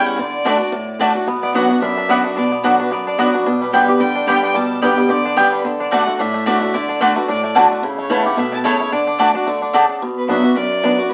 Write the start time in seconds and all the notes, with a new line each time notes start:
Already playing: E2 E3 G3 C#4 E4
0.07 F#5
0.18 D3 D5
0.45 D3 A3 D4 F#4 D5 A5
0.60 D4 F#4
0.72 A2
0.99 D3 A3 D4 F#4 D5 A5
1.15 D4 F#4
1.27 B2 B3
1.42 B3 D5
1.54 F#3 B3 D4 F#4 D5 F#5
1.69 B3 D4 F#4
1.82 F#2 D4 E5
1.97 D4
2.09 F#3 B3 D4 F#4 D5 F#5
2.24 D4 F#4
2.37 B2 D4 D5
2.52 B3
2.64 F#3 B3 D4 F#4 A4 D5 F#5
2.79 D4 F#4 B4
2.91 F#2 B3 D5
3.07 D4 D5
3.18 F#3 B3 D4 F#4 D5 F#5
3.33 D4 F#4
3.46 B2 D4
3.61 G3 B4
3.73 D3 G3 B3 D4 G4 B4 D5 G5
3.88 B3 G4
4.00 D3 G3 G5
4.16 D4
4.27 D3 G3 B3 G4 D5 G5
4.43 D4 G5
4.54 B2 G3 A5
4.82 D3 G3 B3 G4 D5 G5
4.97 B3 G4
5.09 D3 G4 D5
5.25 D4
5.36 D3 G3 B3 G4 B4 D5 G5
5.53 D4
5.64 D3
5.80 D4 D5
5.91 D3 A3 D4 F#4 D5 F#5 A5
6.07 A3 D4 F#4
6.19 A2 D4 E5
6.34 A3
6.46 D3 A3 D4 F#4 D5 A5
6.62 A3 D4 F#4
6.74 D3 D5
6.89 D4
7.00 D3 A3 D4 F#4 A4 D5 A5
7.16 A3 D4 F#4 B4
7.28 A2 D4 D5
7.44 A3 D5
7.55 D3 A3 D4 F#4 D5 A5
7.71 A3
7.83 C#3 E4
7.98 A3 C#5
8.09 E3 A3 C#4 E4 C#5 F#5 A5
8.25 C#4 E4 G4
8.37 B2 A3 E5
8.53 E4 A5
8.64 C#3 A3 E4 C#5 A5
8.80 E4
8.92 D3 D4 D5
9.07 D4
9.18 D3 A3 D4 F#4 D5 A5
9.35 D4 F#4
9.46 D3 A3
9.62 D4
9.73 C#3 A3 D4 F#4 D5 A5
9.89 D4
10.02 B2
10.18 B4
10.29 F#3 B3 D4 F#4 E5
10.43 D4 F#4
10.56 F#2 D5
10.83 F#3 B3 D4 F#4
10.99 D4 F#4
11.11 B2 B4